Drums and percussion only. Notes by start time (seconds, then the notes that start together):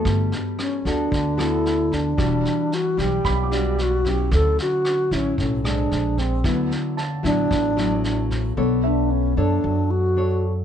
0.05 kick, cross-stick, snare
0.32 snare
0.59 cross-stick, snare
0.85 kick, snare
1.12 kick, snare
1.39 cross-stick, snare
1.65 snare
1.92 kick, snare
2.18 kick, cross-stick, snare
2.45 snare
2.72 snare
2.98 kick, snare
3.24 kick, cross-stick, snare
3.52 snare
3.78 snare
4.05 kick, snare
4.32 kick, cross-stick, snare
4.58 snare
4.85 cross-stick, snare
5.11 kick, snare
5.38 kick, snare
5.65 cross-stick, snare
5.91 snare
6.18 kick, snare
6.44 kick, cross-stick, snare
6.71 snare
6.98 snare
7.24 kick, snare
7.51 kick, cross-stick, snare
7.78 snare
8.04 snare
8.31 kick, snare